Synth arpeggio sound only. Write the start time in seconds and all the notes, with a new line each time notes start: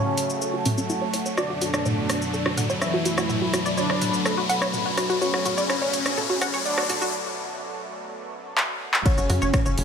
0.06 F#4
0.42 A4
0.54 F#4
0.66 C#4
0.78 C#4
0.90 E4
1.02 C#5
1.14 C#5
1.26 C#5
1.38 F#4
1.50 F#4
1.62 F#4
1.74 D5
1.86 C#5
1.98 C#5
2.34 A4
2.46 F#4
2.57 F#5
2.70 C#5
2.94 F#4
3.06 F#4
3.18 F#4
3.29 F#4
3.42 F#4
3.53 F#4
3.66 D5
3.77 C#5
3.90 C#5
4.25 A4
4.38 F#4
4.49 F#5
4.62 C#5
4.86 F#4
4.97 F#4
5.10 F#4
5.21 F#4
5.34 F#4
5.45 F#4
5.58 D5
5.70 C#5
5.82 C#5
6.17 A4
6.30 F#4
6.41 F#5
6.54 C#5
6.78 F#4
6.90 F#4
7.02 F#4
9.06 F#4
9.18 F#4
9.30 F#4
9.42 C#5
9.54 C#5
9.66 C#5